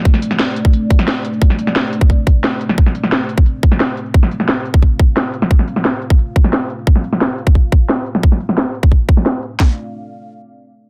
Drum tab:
HH |x-x-x-x-x-x-x-x-|x-x-x-x-x-x-x-x-|x-x-x-x-x-x-x-x-|--x-x-x-x-x-x-x-|
SH |--xx--x-x-x---xx|--xx--x---x---xx|--xx--x-------xx|--xx--x-------xx|
CP |----------------|----------------|----------------|----------------|
SD |-o-oo------oo---|-o-oo-------o--o|-o-oo------oo---|-o-oo-------o--o|
BD |o------o--o-----|o------oo-o-----|o------o--o-----|o------oo-o-----|

HH |--x-x-x-x-x-x-x-|x-x-x-x-x---x-x-|--x-x-x-x---x-x-|----------------|
SH |--xx--x-------xx|--xx--x-------x-|--x---x-------xx|----------------|
CP |----------------|----------------|----------------|x---------------|
SD |-o-oo------oo---|-o-oo-------o--o|-o-oo------oo---|o---------------|
BD |o------o--o-----|o------oo-o-----|o------oo-o-----|o---------------|